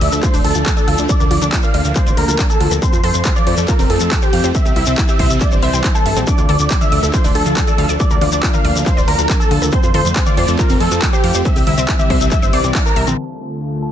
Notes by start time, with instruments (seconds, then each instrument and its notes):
Already playing: supersaw synth F3 A3 D4 E5
0.01 analog synth bass D2, synth arpeggio sound D5, open hi-hat
0.12 analog synth bass D2, synth arpeggio sound A4, closed hi-hat, shekere
0.23 synth arpeggio sound F4, supersaw synth C5, kick, clap, closed hi-hat, shekere
0.34 analog synth bass D1, synth arpeggio sound D4, open hi-hat, shekere
0.44 analog synth bass D2, supersaw synth A4, open hi-hat
0.55 analog synth bass D2, synth arpeggio sound F4, closed hi-hat, shekere
0.66 synth arpeggio sound A4, kick, clap, closed hi-hat, shekere
0.77 supersaw synth A4, synth arpeggio sound D5, closed hi-hat, shekere
0.88 analog synth bass D2, synth arpeggio sound F5, open hi-hat
0.98 analog synth bass D2, synth arpeggio sound D5, closed hi-hat, shekere
1.09 supersaw synth A#3 D5, kick, closed hi-hat, shekere
1.20 analog synth bass D2, synth arpeggio sound A#4, closed hi-hat, shekere
1.31 analog synth bass D2, synth arpeggio sound F4, supersaw synth D5, open hi-hat
1.42 analog synth bass D2, synth arpeggio sound D4, closed hi-hat, shekere
1.52 synth arpeggio sound F4, kick, clap, closed hi-hat, shekere
1.62 synth arpeggio sound A#4, supersaw synth F5, closed hi-hat, shekere
1.74 analog synth bass D2, synth arpeggio sound D5, open hi-hat
1.85 analog synth bass D2, closed hi-hat, shekere
1.96 supersaw synth C5, synth arpeggio sound F5, kick, clap, closed hi-hat, shekere
2.06 analog synth bass D1, synth arpeggio sound D5, closed hi-hat, shekere
2.17 analog synth bass D2, supersaw synth A#4, synth arpeggio sound A#4, open hi-hat
2.28 analog synth bass D2, synth arpeggio sound F4, closed hi-hat, shekere
2.39 synth arpeggio sound D4, kick, clap, closed hi-hat, shekere
2.50 supersaw synth A4, closed hi-hat, shekere
2.60 analog synth bass D2, synth arpeggio sound F4, open hi-hat
2.71 analog synth bass D2, synth arpeggio sound A#4, closed hi-hat, shekere
2.82 supersaw synth F3 A3 C4 C5, synth arpeggio sound C4, kick, closed hi-hat, shekere
2.93 analog synth bass F2, synth arpeggio sound F4, closed hi-hat, shekere
3.03 analog synth bass F2, synth arpeggio sound A4, supersaw synth C5, open hi-hat
3.14 analog synth bass F2, closed hi-hat, shekere
3.25 synth arpeggio sound C5, kick, clap, closed hi-hat, shekere
3.36 supersaw synth D5, synth arpeggio sound F5, closed hi-hat, shekere
3.47 analog synth bass F2, synth arpeggio sound C5, open hi-hat
3.57 analog synth bass F2, synth arpeggio sound A4, closed hi-hat, shekere
3.68 synth arpeggio sound F4, supersaw synth A#4, kick, clap, closed hi-hat, shekere
3.79 analog synth bass F1, synth arpeggio sound C4, open hi-hat, shekere
3.90 analog synth bass F2, supersaw synth A4, open hi-hat
4.00 analog synth bass F2, synth arpeggio sound F4, closed hi-hat, shekere
4.11 synth arpeggio sound A4, kick, clap, closed hi-hat, shekere
4.22 supersaw synth G4, synth arpeggio sound C5, closed hi-hat, shekere
4.33 analog synth bass F2, synth arpeggio sound F5, open hi-hat
4.44 analog synth bass F2, synth arpeggio sound C5, closed hi-hat, shekere
4.55 supersaw synth E3 G3 E5, kick, closed hi-hat, shekere
4.65 analog synth bass C2, synth arpeggio sound G4, closed hi-hat, shekere
4.76 analog synth bass C2, synth arpeggio sound E4, supersaw synth E5, open hi-hat
4.86 analog synth bass C2, synth arpeggio sound C4, closed hi-hat, shekere
4.97 synth arpeggio sound E4, kick, clap, closed hi-hat, shekere
5.08 synth arpeggio sound G4, supersaw synth E5, closed hi-hat, shekere
5.19 analog synth bass C2, synth arpeggio sound C5, kick, open hi-hat
5.30 analog synth bass C2, closed hi-hat, shekere
5.41 supersaw synth D5, synth arpeggio sound E5, kick, clap, closed hi-hat, shekere
5.51 analog synth bass G1, synth arpeggio sound C5, closed hi-hat, shekere
5.62 analog synth bass C2, supersaw synth C5, synth arpeggio sound E5, open hi-hat
5.73 analog synth bass C2, synth arpeggio sound G5, closed hi-hat, shekere
5.84 synth arpeggio sound E4, kick, clap, closed hi-hat, shekere
5.95 supersaw synth A4, synth arpeggio sound C5, closed hi-hat, shekere
6.06 analog synth bass G1, synth arpeggio sound E5, open hi-hat
6.16 analog synth bass A#1, synth arpeggio sound C4, closed hi-hat, shekere
6.27 supersaw synth F3 A3 D4 D5, synth arpeggio sound D4, kick, closed hi-hat, shekere
6.38 analog synth bass D2, synth arpeggio sound F4, closed hi-hat, shekere
6.49 analog synth bass D2, synth arpeggio sound A4, supersaw synth D5, open hi-hat, mid tom
6.59 analog synth bass D2, closed hi-hat, shekere
6.70 synth arpeggio sound D5, kick, clap, closed hi-hat, shekere
6.81 supersaw synth E5, synth arpeggio sound F5, closed hi-hat, mid tom, shekere
6.92 analog synth bass D2, synth arpeggio sound D5, open hi-hat
7.03 analog synth bass D2, synth arpeggio sound A4, closed hi-hat, shekere
7.13 synth arpeggio sound F4, supersaw synth C5, kick, clap, closed hi-hat, shekere
7.24 analog synth bass D1, synth arpeggio sound D4, open hi-hat, shekere
7.35 analog synth bass D2, supersaw synth A4, open hi-hat
7.46 analog synth bass D2, synth arpeggio sound F4, closed hi-hat, shekere
7.57 synth arpeggio sound A4, kick, clap, closed hi-hat, shekere
7.67 supersaw synth A4, synth arpeggio sound D5, closed hi-hat, shekere
7.78 analog synth bass D2, synth arpeggio sound F5, open hi-hat
7.89 analog synth bass D2, synth arpeggio sound D5, closed hi-hat, shekere
8.00 supersaw synth A#3 D4 D5, kick, closed hi-hat, shekere
8.10 analog synth bass D2, synth arpeggio sound A#4, closed hi-hat, shekere
8.21 analog synth bass D2, synth arpeggio sound F4, supersaw synth D5, open hi-hat, mid tom
8.32 analog synth bass D2, synth arpeggio sound D4, closed hi-hat, shekere
8.43 synth arpeggio sound F4, kick, clap, closed hi-hat, shekere
8.53 synth arpeggio sound A#4, supersaw synth F5, closed hi-hat, mid tom, shekere
8.65 analog synth bass D2, synth arpeggio sound D5, open hi-hat
8.75 analog synth bass D2, closed hi-hat, shekere
8.86 supersaw synth C5, synth arpeggio sound F5, kick, clap, closed hi-hat, shekere
8.97 analog synth bass D1, synth arpeggio sound D5, closed hi-hat, shekere
9.08 analog synth bass D2, supersaw synth A#4, synth arpeggio sound A#4, open hi-hat
9.18 analog synth bass D2, synth arpeggio sound F4, closed hi-hat, shekere
9.29 synth arpeggio sound D4, kick, clap, closed hi-hat, shekere
9.40 supersaw synth A4, closed hi-hat, shekere
9.51 analog synth bass D2, synth arpeggio sound F4, open hi-hat
9.62 analog synth bass D2, synth arpeggio sound A#4, closed hi-hat, mid tom, shekere
9.72 supersaw synth F3 A3 C4 C5, synth arpeggio sound C4, kick, closed hi-hat, shekere
9.83 analog synth bass F2, synth arpeggio sound F4, closed hi-hat, shekere
9.94 analog synth bass F2, synth arpeggio sound A4, supersaw synth C5, open hi-hat, mid tom
10.05 analog synth bass F2, closed hi-hat, shekere
10.16 synth arpeggio sound C5, kick, clap, closed hi-hat, shekere
10.26 supersaw synth D5, synth arpeggio sound F5, closed hi-hat, mid tom, shekere
10.37 analog synth bass F2, synth arpeggio sound C5, open hi-hat
10.48 analog synth bass F2, synth arpeggio sound A4, closed hi-hat, shekere
10.59 synth arpeggio sound F4, supersaw synth A#4, kick, clap, closed hi-hat, shekere
10.69 analog synth bass F1, synth arpeggio sound C4, open hi-hat, shekere
10.80 analog synth bass F2, supersaw synth A4, open hi-hat
10.91 analog synth bass F2, synth arpeggio sound F4, closed hi-hat, shekere
11.02 synth arpeggio sound A4, kick, clap, closed hi-hat, shekere
11.13 supersaw synth G4, synth arpeggio sound C5, closed hi-hat, shekere
11.24 analog synth bass F2, synth arpeggio sound F5, open hi-hat
11.34 analog synth bass F2, synth arpeggio sound C5, closed hi-hat, shekere
11.45 supersaw synth E3 G3 E5, kick, closed hi-hat, shekere
11.56 analog synth bass C2, synth arpeggio sound G4, open hi-hat, shekere
11.67 analog synth bass C2, synth arpeggio sound E4, supersaw synth E5, open hi-hat, mid tom
11.78 analog synth bass C2, synth arpeggio sound C4, closed hi-hat, shekere
11.88 synth arpeggio sound E4, kick, clap, closed hi-hat, shekere
11.99 synth arpeggio sound G4, supersaw synth E5, closed hi-hat, mid tom, shekere
12.10 analog synth bass C2, synth arpeggio sound C5, kick, open hi-hat
12.21 analog synth bass C2, closed hi-hat, shekere
12.31 supersaw synth E5, synth arpeggio sound E5, kick, clap, closed hi-hat, shekere
12.42 analog synth bass G1, synth arpeggio sound C5, closed hi-hat, shekere
12.53 analog synth bass C2, synth arpeggio sound C5, supersaw synth D5, open hi-hat
12.64 analog synth bass C2, synth arpeggio sound C4, closed hi-hat, shekere
12.75 synth arpeggio sound E4, kick, clap, closed hi-hat, shekere
12.85 supersaw synth A#4, closed hi-hat, shekere
12.96 analog synth bass C2, synth arpeggio sound E5, open hi-hat
13.07 analog synth bass A#1, synth arpeggio sound C4, closed hi-hat, mid tom, shekere
13.18 supersaw synth D2 D3 A3 F4 A4, synth bell A5
13.82 synth bell A5